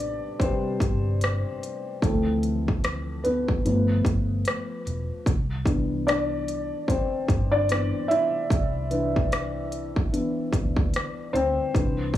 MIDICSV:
0, 0, Header, 1, 4, 480
1, 0, Start_track
1, 0, Key_signature, 0, "major"
1, 0, Tempo, 810811
1, 1197, Time_signature, 4, 2, 24, 8
1, 7209, End_track
2, 0, Start_track
2, 0, Title_t, "Felt piano"
2, 0, Program_c, 0, 0
2, 0, Control_c, 0, 64, 127
2, 0, Note_on_c, 0, 48, 55
2, 0, Note_on_c, 0, 55, 51
2, 0, Note_on_c, 0, 59, 56
2, 0, Note_on_c, 0, 62, 83
2, 0, Note_on_c, 0, 74, 102
2, 218, Note_off_c, 0, 62, 0
2, 235, Note_on_c, 0, 72, 105
2, 242, Note_off_c, 0, 48, 0
2, 242, Note_on_c, 0, 48, 53
2, 246, Note_off_c, 0, 55, 0
2, 246, Note_on_c, 0, 55, 47
2, 246, Note_on_c, 0, 71, 56
2, 249, Note_off_c, 0, 74, 0
2, 249, Note_on_c, 0, 60, 80
2, 456, Note_off_c, 0, 48, 0
2, 458, Note_off_c, 0, 55, 0
2, 458, Note_off_c, 0, 71, 0
2, 1179, Note_off_c, 0, 60, 0
2, 1198, Note_on_c, 0, 69, 87
2, 1201, Note_on_c, 0, 52, 58
2, 1204, Control_c, 0, 64, 0
2, 1205, Note_on_c, 0, 53, 49
2, 1206, Note_off_c, 0, 59, 0
2, 1208, Note_on_c, 0, 57, 70
2, 1209, Note_on_c, 0, 60, 61
2, 1225, Note_off_c, 0, 72, 0
2, 1306, Control_c, 0, 64, 127
2, 1895, Note_off_c, 0, 52, 0
2, 1897, Note_off_c, 0, 53, 0
2, 1899, Note_off_c, 0, 57, 0
2, 1899, Note_off_c, 0, 60, 0
2, 1915, Note_on_c, 0, 71, 79
2, 1925, Note_on_c, 0, 59, 61
2, 1939, Note_off_c, 0, 69, 0
2, 2156, Note_off_c, 0, 59, 0
2, 2159, Note_on_c, 0, 53, 60
2, 2161, Note_on_c, 0, 57, 54
2, 2164, Note_on_c, 0, 59, 62
2, 2165, Control_c, 0, 64, 0
2, 2279, Control_c, 0, 64, 127
2, 2852, Note_off_c, 0, 71, 0
2, 2854, Note_off_c, 0, 53, 0
2, 2855, Note_off_c, 0, 57, 0
2, 2857, Note_off_c, 0, 59, 0
2, 3124, Control_c, 0, 64, 0
2, 3245, Control_c, 0, 64, 127
2, 3355, Note_on_c, 0, 52, 51
2, 3359, Note_on_c, 0, 59, 51
2, 3362, Note_on_c, 0, 62, 65
2, 3592, Note_on_c, 0, 74, 91
2, 3593, Note_off_c, 0, 62, 0
2, 3602, Note_on_c, 0, 62, 74
2, 4052, Note_off_c, 0, 52, 0
2, 4054, Note_off_c, 0, 59, 0
2, 4056, Note_off_c, 0, 62, 0
2, 4073, Note_on_c, 0, 72, 93
2, 4083, Note_on_c, 0, 60, 74
2, 4089, Note_off_c, 0, 74, 0
2, 4441, Note_off_c, 0, 60, 0
2, 4450, Note_on_c, 0, 74, 106
2, 4464, Note_on_c, 0, 62, 75
2, 4471, Note_off_c, 0, 72, 0
2, 4549, Note_off_c, 0, 62, 0
2, 4555, Note_on_c, 0, 52, 53
2, 4558, Note_on_c, 0, 59, 48
2, 4558, Note_on_c, 0, 62, 59
2, 4772, Note_off_c, 0, 52, 0
2, 4774, Note_off_c, 0, 59, 0
2, 4774, Note_off_c, 0, 62, 0
2, 4785, Note_on_c, 0, 76, 94
2, 4799, Note_on_c, 0, 64, 79
2, 4801, Note_off_c, 0, 74, 0
2, 5271, Note_on_c, 0, 52, 56
2, 5274, Note_on_c, 0, 71, 50
2, 5280, Note_on_c, 0, 62, 60
2, 5985, Note_off_c, 0, 52, 0
2, 5988, Note_off_c, 0, 62, 0
2, 5994, Note_on_c, 0, 52, 49
2, 5996, Note_on_c, 0, 59, 51
2, 5997, Note_on_c, 0, 62, 56
2, 6212, Note_off_c, 0, 52, 0
2, 6213, Note_off_c, 0, 59, 0
2, 6213, Note_off_c, 0, 62, 0
2, 6687, Note_off_c, 0, 76, 0
2, 6694, Note_off_c, 0, 64, 0
2, 6708, Note_on_c, 0, 72, 114
2, 6719, Note_on_c, 0, 60, 88
2, 6932, Note_off_c, 0, 71, 0
2, 6956, Note_on_c, 0, 52, 51
2, 6957, Note_on_c, 0, 71, 51
2, 6962, Note_on_c, 0, 62, 57
2, 6965, Control_c, 0, 64, 0
2, 7072, Control_c, 0, 64, 127
2, 7169, Note_off_c, 0, 72, 0
2, 7174, Note_off_c, 0, 60, 0
2, 7209, Note_off_c, 0, 52, 0
2, 7209, Note_off_c, 0, 62, 0
2, 7209, Note_off_c, 0, 71, 0
2, 7209, End_track
3, 0, Start_track
3, 0, Title_t, "Fingered electric bass"
3, 0, Program_c, 1, 33
3, 0, Note_on_c, 1, 33, 99
3, 120, Note_off_c, 1, 33, 0
3, 480, Note_on_c, 1, 31, 82
3, 844, Note_off_c, 1, 31, 0
3, 1201, Note_on_c, 1, 38, 100
3, 2040, Note_off_c, 1, 38, 0
3, 2163, Note_on_c, 1, 31, 106
3, 2388, Note_off_c, 1, 31, 0
3, 2396, Note_on_c, 1, 31, 82
3, 2624, Note_off_c, 1, 31, 0
3, 2883, Note_on_c, 1, 28, 85
3, 3017, Note_off_c, 1, 28, 0
3, 3118, Note_on_c, 1, 36, 98
3, 3959, Note_off_c, 1, 36, 0
3, 4313, Note_on_c, 1, 31, 87
3, 4680, Note_off_c, 1, 31, 0
3, 5038, Note_on_c, 1, 36, 93
3, 5878, Note_off_c, 1, 36, 0
3, 6233, Note_on_c, 1, 38, 77
3, 6462, Note_off_c, 1, 38, 0
3, 6713, Note_on_c, 1, 38, 80
3, 6852, Note_off_c, 1, 38, 0
3, 6956, Note_on_c, 1, 36, 102
3, 7209, Note_off_c, 1, 36, 0
3, 7209, End_track
4, 0, Start_track
4, 0, Title_t, "Drums"
4, 0, Note_on_c, 9, 42, 68
4, 58, Note_off_c, 9, 42, 0
4, 235, Note_on_c, 9, 36, 87
4, 245, Note_on_c, 9, 42, 79
4, 294, Note_off_c, 9, 36, 0
4, 304, Note_off_c, 9, 42, 0
4, 475, Note_on_c, 9, 36, 99
4, 483, Note_on_c, 9, 42, 75
4, 535, Note_off_c, 9, 36, 0
4, 542, Note_off_c, 9, 42, 0
4, 718, Note_on_c, 9, 42, 80
4, 733, Note_on_c, 9, 37, 121
4, 777, Note_off_c, 9, 42, 0
4, 793, Note_off_c, 9, 37, 0
4, 967, Note_on_c, 9, 42, 63
4, 1026, Note_off_c, 9, 42, 0
4, 1198, Note_on_c, 9, 36, 108
4, 1204, Note_on_c, 9, 42, 81
4, 1257, Note_off_c, 9, 36, 0
4, 1264, Note_off_c, 9, 42, 0
4, 1439, Note_on_c, 9, 42, 68
4, 1499, Note_off_c, 9, 42, 0
4, 1588, Note_on_c, 9, 36, 82
4, 1647, Note_off_c, 9, 36, 0
4, 1681, Note_on_c, 9, 42, 78
4, 1685, Note_on_c, 9, 37, 110
4, 1740, Note_off_c, 9, 42, 0
4, 1744, Note_off_c, 9, 37, 0
4, 1922, Note_on_c, 9, 42, 65
4, 1981, Note_off_c, 9, 42, 0
4, 2062, Note_on_c, 9, 36, 92
4, 2122, Note_off_c, 9, 36, 0
4, 2165, Note_on_c, 9, 42, 82
4, 2224, Note_off_c, 9, 42, 0
4, 2395, Note_on_c, 9, 36, 90
4, 2405, Note_on_c, 9, 42, 73
4, 2455, Note_off_c, 9, 36, 0
4, 2464, Note_off_c, 9, 42, 0
4, 2635, Note_on_c, 9, 42, 87
4, 2650, Note_on_c, 9, 37, 127
4, 2694, Note_off_c, 9, 42, 0
4, 2709, Note_off_c, 9, 37, 0
4, 2883, Note_on_c, 9, 42, 68
4, 2942, Note_off_c, 9, 42, 0
4, 3115, Note_on_c, 9, 36, 111
4, 3120, Note_on_c, 9, 42, 82
4, 3174, Note_off_c, 9, 36, 0
4, 3179, Note_off_c, 9, 42, 0
4, 3348, Note_on_c, 9, 36, 101
4, 3356, Note_on_c, 9, 42, 70
4, 3407, Note_off_c, 9, 36, 0
4, 3415, Note_off_c, 9, 42, 0
4, 3601, Note_on_c, 9, 42, 71
4, 3605, Note_on_c, 9, 37, 113
4, 3660, Note_off_c, 9, 42, 0
4, 3664, Note_off_c, 9, 37, 0
4, 3838, Note_on_c, 9, 42, 70
4, 3897, Note_off_c, 9, 42, 0
4, 4073, Note_on_c, 9, 36, 85
4, 4083, Note_on_c, 9, 42, 74
4, 4132, Note_off_c, 9, 36, 0
4, 4142, Note_off_c, 9, 42, 0
4, 4312, Note_on_c, 9, 36, 103
4, 4320, Note_on_c, 9, 42, 75
4, 4372, Note_off_c, 9, 36, 0
4, 4379, Note_off_c, 9, 42, 0
4, 4554, Note_on_c, 9, 42, 84
4, 4569, Note_on_c, 9, 37, 122
4, 4613, Note_off_c, 9, 42, 0
4, 4628, Note_off_c, 9, 37, 0
4, 4802, Note_on_c, 9, 42, 65
4, 4862, Note_off_c, 9, 42, 0
4, 5035, Note_on_c, 9, 36, 114
4, 5041, Note_on_c, 9, 42, 83
4, 5094, Note_off_c, 9, 36, 0
4, 5101, Note_off_c, 9, 42, 0
4, 5275, Note_on_c, 9, 42, 65
4, 5334, Note_off_c, 9, 42, 0
4, 5424, Note_on_c, 9, 36, 83
4, 5484, Note_off_c, 9, 36, 0
4, 5519, Note_on_c, 9, 42, 75
4, 5523, Note_on_c, 9, 37, 116
4, 5578, Note_off_c, 9, 42, 0
4, 5582, Note_off_c, 9, 37, 0
4, 5755, Note_on_c, 9, 42, 66
4, 5814, Note_off_c, 9, 42, 0
4, 5898, Note_on_c, 9, 36, 92
4, 5958, Note_off_c, 9, 36, 0
4, 6002, Note_on_c, 9, 42, 80
4, 6061, Note_off_c, 9, 42, 0
4, 6231, Note_on_c, 9, 36, 98
4, 6237, Note_on_c, 9, 42, 72
4, 6290, Note_off_c, 9, 36, 0
4, 6296, Note_off_c, 9, 42, 0
4, 6373, Note_on_c, 9, 36, 98
4, 6432, Note_off_c, 9, 36, 0
4, 6475, Note_on_c, 9, 42, 84
4, 6490, Note_on_c, 9, 37, 120
4, 6534, Note_off_c, 9, 42, 0
4, 6549, Note_off_c, 9, 37, 0
4, 6722, Note_on_c, 9, 42, 65
4, 6782, Note_off_c, 9, 42, 0
4, 6954, Note_on_c, 9, 36, 113
4, 6961, Note_on_c, 9, 42, 79
4, 7013, Note_off_c, 9, 36, 0
4, 7020, Note_off_c, 9, 42, 0
4, 7185, Note_on_c, 9, 36, 88
4, 7209, Note_off_c, 9, 36, 0
4, 7209, End_track
0, 0, End_of_file